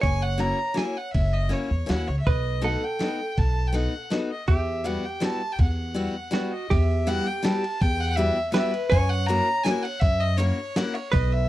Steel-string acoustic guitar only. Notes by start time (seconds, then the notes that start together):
0.38 A#3 C#4 E4 F#4
0.74 A#3 C#4 E4 F#4
1.49 A#3 C#4 E4 F#4
1.86 A#3 C#4 E4 F#4
2.62 A3 B3 D#4 F#4
2.99 A3 B3 D#4 F#4
3.72 A3 B3 D#4 F#4
4.10 A3 B3 D#4 F#4
4.84 G3 B3 E4 F#4
5.20 G3 B3 E4 F#4
5.94 G3 B3 E4 F#4
6.31 G3 B3 E4 F#4
7.07 G3 B3 E4 F#4 G4
7.43 G3 B3 E4 F#4 G4
8.17 G3 B3 E4 F#4 G4
8.52 G3 B3 E4 F#4 G4
9.28 A#3 C#4 E4 F#4 A#4
9.64 A#3 C#4 E4 F#4 A#4
10.38 A#3 C#4 E4 F#4 A#4
10.76 A#3 C#4 E4 F#4 A#4